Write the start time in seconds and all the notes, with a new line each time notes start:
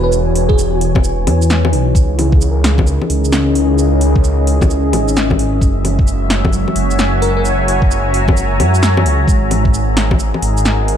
Already playing: E1 E3 F#4 C#5 G#5
0.03 B4
0.09 B4, shaker
0.35 open hi-hat
0.49 G#4, kick
0.58 shaker
0.81 open hi-hat
0.95 kick, low bongo
1.04 shaker
1.26 E2, open hi-hat, low bongo
1.42 shaker
1.50 snare, shaker
1.65 low bongo
1.73 B1 D#4, open hi-hat
1.95 C#2 C#4, kick, shaker
2.06 D#5
2.11 G#4
2.18 E4, open hi-hat, low bongo
2.32 kick
2.37 G#4, shaker
2.51 A#4
2.64 snare, open hi-hat
2.77 E5, kick, low bongo
2.87 shaker
3.02 low bongo
3.10 C#2, open hi-hat
3.25 shaker
3.32 C#4, snare, shaker
3.55 open hi-hat
3.78 shaker
4.01 open hi-hat
4.16 kick
4.24 shaker
4.47 open hi-hat
4.61 kick, low bongo, shaker
4.70 shaker
4.93 G#1 G#3, open hi-hat, low bongo
5.08 shaker
5.17 snare, shaker
5.30 kick, low bongo
5.39 G#1, open hi-hat
5.61 F#1 F#4 C#5, kick, shaker
5.83 G#5, open hi-hat, low bongo
5.99 kick
6.07 shaker
6.30 A#5, snare, open hi-hat
6.45 kick, low bongo
6.53 F#3, shaker
6.68 low bongo
6.76 F#1, open hi-hat
6.91 shaker
6.99 snare, shaker
7.22 A#4, open hi-hat
7.37 A#4
7.45 shaker
7.68 open hi-hat
7.82 kick
7.91 shaker
8.14 open hi-hat
8.28 kick, low bongo
8.37 shaker
8.60 F#2, open hi-hat, low bongo
8.74 shaker
8.83 snare, shaker
8.97 low bongo
9.04 C#2, open hi-hat
9.26 G#1 G#3, kick, shaker
9.35 G#4
9.51 open hi-hat, low bongo
9.65 A#4, kick
9.74 shaker
9.92 F#5
9.97 snare, open hi-hat
10.11 kick, low bongo
10.19 shaker
10.34 low bongo
10.42 G#1, open hi-hat
10.57 shaker
10.65 snare, shaker
10.88 open hi-hat